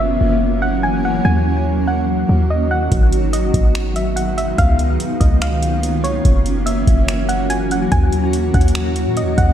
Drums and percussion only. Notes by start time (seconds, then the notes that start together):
2.92 kick, closed hi-hat
3.12 closed hi-hat
3.33 closed hi-hat
3.54 kick, closed hi-hat
3.75 finger snap, closed hi-hat
3.96 closed hi-hat
4.17 closed hi-hat
4.38 closed hi-hat
4.58 kick, closed hi-hat
4.79 closed hi-hat
5.00 closed hi-hat
5.21 kick, closed hi-hat
5.42 finger snap, closed hi-hat
5.63 closed hi-hat
5.83 closed hi-hat
6.04 closed hi-hat
6.25 kick, closed hi-hat
6.46 closed hi-hat
6.67 closed hi-hat
6.87 kick, closed hi-hat
7.08 finger snap, closed hi-hat
7.29 closed hi-hat
7.50 closed hi-hat
7.71 closed hi-hat
7.92 kick, closed hi-hat
8.12 closed hi-hat
8.33 closed hi-hat
8.54 kick, closed hi-hat
8.61 closed hi-hat
8.68 closed hi-hat
8.75 finger snap, closed hi-hat
8.96 closed hi-hat
9.17 closed hi-hat
9.38 kick, closed hi-hat